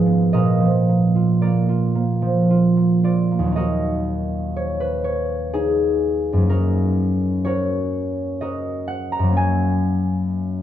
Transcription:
harp
Already playing: G#2 F3 G#3 B4 F5
0.06 B3
0.33 A#2 A#4 D#5
0.61 F3
0.89 A#3
1.15 F4
1.41 A#3 A#4 D5
1.69 F4
1.95 A#3
2.22 F3
2.50 F4
2.77 A#3
3.04 F4 D5
3.31 A#3
3.39 D#2
3.43 F#3 A#3
3.52 D#4 D#5
3.57 F#4 A#4
4.56 C#5
4.80 B4
5.04 C#5
5.54 D#4 G#4
6.33 F#2
6.37 F#3
6.41 A#3
6.50 D#4 F#4 A#4
7.45 F#4 A#4 C#5
8.41 F#4 A#4 D#5
8.88 F#5
9.12 A#5
9.19 F#2
9.23 F#3
9.28 A#3
9.32 C#4
9.37 G#5

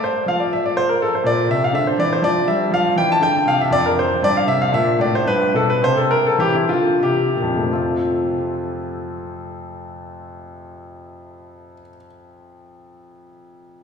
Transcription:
grand piano
Already playing: A3
0.04 C5
0.26 F3 F5
0.40 D5
0.53 E5
0.66 D5
0.77 C5
0.89 A#4
1.02 A4
1.15 C5
1.24 A#2 D5
1.49 C3 E5
1.64 F5
1.73 D3 E5
1.87 C5
1.98 E3 D5
2.13 C5
2.22 F3 D5
2.46 G3 E5
2.71 F3 F5
2.96 E3 G5
3.12 A5
3.21 D3 G5
3.46 C3 F5
3.61 E5
3.71 F2 D5
3.86 A#4
3.99 C5
4.22 G2 D5
4.37 F5
4.47 C3 E5
4.62 F5
4.73 A#2 E5
4.99 A2 D5
5.15 C5
5.26 G2 B4
5.54 B2 A4
5.70 B4
5.82 C3 C5
5.97 A4
6.11 A#4
6.27 A4
6.38 E3 G4
6.54 E4
6.68 D3 F4
7.01 C3 G4
7.37 A#2
7.42 F2
7.50 C3
7.57 A3
7.64 C4
7.73 F4

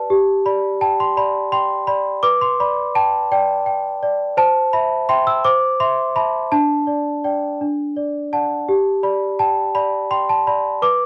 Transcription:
celesta
Already playing: B4 D5 A5
0.10 G4
0.46 D5 B5
0.81 G5 A5
1.00 C6
1.17 D5 B5
1.52 G5 C6
1.87 D5 B5
2.23 B4 D6
2.41 C6
2.60 D5 B5
2.95 G5 A5
3.32 D5 G5
3.66 G5
4.03 D5
4.37 C5 A5
4.73 E5 B5
5.09 E5 G5 C6
5.27 E6
5.45 C5 D6
5.80 E5 C6
6.16 E5 A5 B5
6.52 D4 A5
6.87 D5
7.24 D5 G5
7.61 D4
7.96 D5
8.33 D5 F#5 A5
8.69 G4
9.03 D5 B5
9.39 G5 A5
9.75 D5 B5
10.11 G5 C6
10.29 A5
10.47 D5 B5
10.82 B4 D6

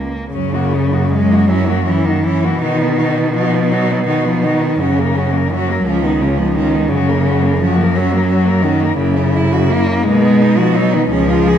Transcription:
cello
Already playing: A#3
0.32 F#2 C#3 F#3 C#4
0.54 A#3 F#4
0.74 F#3 C#4
0.92 A#3 F#4
1.12 F#3 G#3 C#4
1.31 A#3 F#4
1.49 F#3 C#4 E4
1.67 A#3 F#4
1.86 E3 C#4
1.91 E4
2.05 D#3 A#3 F#4
2.24 E3 C#4 E4
2.44 A#3 F#4
2.61 B2 D#3 D#4 F#4
2.80 B3 D#4
2.97 D#4 F#4
3.16 B3 D#4
3.34 F3 D#4 F#4
3.54 B3 D#4
3.71 F#3 D#4 F#4
3.92 B3 D#4
4.07 D#3 D#4 F#4
4.25 F3 B3 D#4
4.44 D#3 D#4 F#4
4.62 B3 D#4
4.79 F#2 C#3 C#4 F#4
4.99 A#3 A#4
5.15 C#4 F#4
5.32 A#3 A#4
5.53 F#3 C#4 F#4
5.68 A#3 A#4
5.85 C#2 F3 C#4 F4
6.04 D#3 B3 D#4
6.21 C#3 C#4 F4
6.38 F3 B3 D#4
6.55 D#3 C#4 F4
6.75 B3 D#4
6.89 F#2 C#3 C#4 F#4
7.09 A#3 A#4
7.25 C#4
7.29 F#4
7.42 A#3
7.46 A#4
7.59 F3 C#4
7.65 F#4
7.76 A#3
7.83 A#4
7.95 F#3 C#4 F#4
8.12 A#3
8.17 A#4
8.27 C#4
8.32 F#4
8.46 A#3 A#4
8.62 D#3 C#4 F#4
8.82 A#3 A#4
8.97 F#2 C#3 A#3 E4
9.17 C#4
9.36 E4
9.54 F#4
9.69 A#3 E4
9.87 C#4
10.03 B2 G#3 A#3 D#4
10.24 B3
10.41 D#4
10.57 F3 F#4
10.75 F#3 D#4
10.94 D#3 B3
11.09 C#2 F3 C#4 G#4
11.30 F4
11.48 G#4

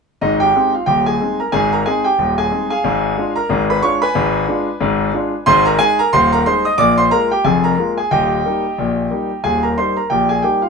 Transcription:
grand piano
0.21 G#1 G#2 D#4 D#5
0.40 G4 G5
0.55 G#3 C4 D#4
0.74 F4 F5
0.86 D#1 D#2 G4 G5
1.06 G#4 G#5
1.20 G#3 C4 D#4
1.40 A#4 A#5
1.52 G#1 G#2 G#4 G#5
1.73 A#4 A#5
1.86 G#3 C4 D#4 G#4 G#5
2.04 G4 G5
2.18 D#1 D#2
2.38 G#4 G#5
2.51 G#3 C4 D#4
2.70 G#4 F5 G#5
2.84 G#1 G#2
3.18 G#3 D4 F4
3.36 A#4 A#5
3.49 G#1 G#2
3.70 B4 B5
3.83 G#3 D4 F4 C#5 C#6
4.02 B4 G#5 B5
4.15 G#1 G#2
4.48 G#3 D4 F4
4.81 G#1 G#2
5.13 G#3 D4 F4
5.46 G#1 G#2 C5 C6
5.65 A#4 A#5
5.79 G#3 D#4 G#4 G#5
5.99 A#4 A#5
6.13 D#1 D#2 C5 C6
6.33 A#4 A#5
6.46 G#3 D#4 G#4 C5 C6
6.65 D#5 D#6
6.78 A#1 A#2 D5 D6
6.98 C5 C6
7.11 G#3 A#3 F4 A#4 A#5
7.31 G4 G5
7.44 F1 F2 G#4 G#5
7.64 A#4 A#5
7.78 G#3 A#3 F4
7.97 G#4 G#5
8.11 D#1 D#2 G4 D#5 G5
8.46 G3 A#3 D#4
8.78 A#1 A#2
9.11 G3 A#3 D#4
9.44 D#1 D#2 G#4 G#5
9.63 A#4 A#5
9.78 G3 A#3 D#4 C5 C6
9.97 A#4 A#5
10.10 A#1 A#2 G4 G5
10.29 G#4 G#5
10.42 G3 A#3 D#4 G4 G5
10.62 F4 F5

